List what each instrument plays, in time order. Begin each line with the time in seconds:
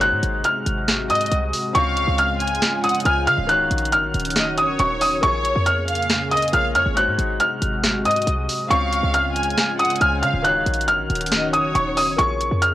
Already playing: 808-style bass G#1
0.00 analog synth pad C3 G#3 F#4, grand piano G#3 D#4 F#4 C5, felt piano F#6, closed hi-hat
0.12 808-style bass G#2
0.23 808-style bass G#1, closed hi-hat
0.44 felt piano F6, closed hi-hat
0.66 808-style bass G#1, closed hi-hat
0.88 snare, closed hi-hat
1.10 808-style bass G#2, violin section D#5, felt piano D#6, closed hi-hat
1.15 closed hi-hat
1.21 closed hi-hat
1.26 closed hi-hat
1.32 808-style bass C2, closed hi-hat
1.53 open hi-hat
1.73 808-style bass C#2, grand piano C#3 C#4 F4, analog synth pad C#3 G#3 F4, violin section F5, felt piano C#6, closed hi-hat
1.77 grand piano C4
1.97 closed hi-hat
2.08 808-style bass C#2
2.18 felt piano F6, closed hi-hat
2.40 violin section G#5, closed hi-hat
2.48 closed hi-hat
2.55 closed hi-hat
2.62 snare, closed hi-hat
2.84 violin section F#5, felt piano D#6, closed hi-hat
2.89 closed hi-hat
2.95 closed hi-hat
3.00 closed hi-hat
3.04 808-style bass C#2, grand piano C#3 C#4 F4 C5, violin section G#5, felt piano F6, closed hi-hat
3.27 808-style bass C#3, violin section F5, felt piano F6, closed hi-hat
3.38 808-style bass C#1
3.47 grand piano D#3 D#4 F#4, analog synth pad D#3 C#4 F#4, felt piano F#6, closed hi-hat
3.51 grand piano C#5
3.71 808-style bass A#1, closed hi-hat
3.78 closed hi-hat
3.85 closed hi-hat
3.92 808-style bass F#1, felt piano F6, closed hi-hat
4.03 808-style bass A#1
4.14 808-style bass D#1, closed hi-hat
4.19 closed hi-hat
4.25 closed hi-hat
4.30 closed hi-hat
4.36 violin section D#5, snare
4.58 violin section C#5, felt piano D#6, closed hi-hat
4.79 808-style bass D#1, felt piano C#6, closed hi-hat
5.01 felt piano D#6, open hi-hat
5.21 808-style bass A#1, analog synth pad C#3 A#3 G#4, grand piano A#3 F4 G#4, violin section C#5, felt piano C#6, closed hi-hat
5.25 grand piano C#5
5.45 closed hi-hat
5.56 808-style bass F2
5.66 felt piano F6, closed hi-hat
5.88 violin section F5, closed hi-hat
5.95 closed hi-hat
6.03 closed hi-hat
6.10 snare, closed hi-hat
6.31 808-style bass C#2, violin section D#5, felt piano D#6, closed hi-hat
6.37 closed hi-hat
6.42 808-style bass F2, closed hi-hat
6.48 closed hi-hat
6.52 808-style bass A#1, grand piano A#3 F4 G#4 C#5, violin section F5, felt piano F6, closed hi-hat
6.75 808-style bass F2, violin section C#5, felt piano F6, closed hi-hat
6.86 808-style bass G#1
6.95 analog synth pad C3 G#3 F#4, grand piano G#3 D#4 F#4, felt piano F#6, closed hi-hat
6.99 grand piano C5
7.08 808-style bass G#2
7.19 808-style bass G#1, closed hi-hat
7.40 felt piano F6, closed hi-hat
7.62 808-style bass G#1, closed hi-hat
7.84 snare, closed hi-hat
8.05 808-style bass G#2, violin section D#5, felt piano D#6, closed hi-hat
8.11 closed hi-hat
8.16 closed hi-hat
8.22 closed hi-hat
8.27 808-style bass C2, closed hi-hat
8.49 open hi-hat
8.69 808-style bass C#2, grand piano C#3 C#4 F4, analog synth pad C#3 G#3 F4, violin section F5, felt piano C#6, closed hi-hat
8.73 grand piano C4
8.93 closed hi-hat
9.03 808-style bass C#2
9.14 felt piano F6, closed hi-hat
9.36 violin section G#5, closed hi-hat
9.43 closed hi-hat
9.50 closed hi-hat
9.58 snare, closed hi-hat
9.79 violin section F#5, felt piano D#6, closed hi-hat
9.85 closed hi-hat
9.90 closed hi-hat
9.96 closed hi-hat
10.00 808-style bass C#2, grand piano C#3 C#4 F4 C5, violin section G#5, felt piano F6, closed hi-hat
10.23 808-style bass C#3, violin section F5, felt piano F6, closed hi-hat
10.34 808-style bass C#1
10.43 grand piano D#3 D#4 F#4, analog synth pad D#3 C#4 F#4, felt piano F#6, closed hi-hat
10.47 grand piano C#5
10.66 808-style bass A#1, closed hi-hat
10.74 closed hi-hat
10.81 closed hi-hat
10.88 808-style bass F#1, felt piano F6, closed hi-hat
10.99 808-style bass A#1
11.10 808-style bass D#1, closed hi-hat
11.15 closed hi-hat
11.21 closed hi-hat
11.26 closed hi-hat
11.32 violin section D#5, snare, closed hi-hat
11.53 violin section C#5, felt piano D#6, closed hi-hat
11.75 808-style bass D#1, felt piano C#6, closed hi-hat
11.97 felt piano D#6, open hi-hat
12.16 808-style bass A#1, analog synth pad C#3 A#3 G#4, grand piano A#3 F4 G#4, felt piano C#6, closed hi-hat
12.21 grand piano C#5
12.41 closed hi-hat
12.51 808-style bass F2
12.62 felt piano F6, closed hi-hat